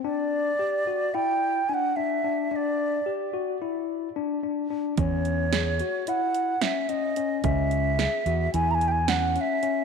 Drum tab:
HH |---------|---------|xxxxxxxxx|xxxxxxxxx|
SD |---------|---------|--o---o--|--o---o--|
BD |---------|---------|o--------|o--------|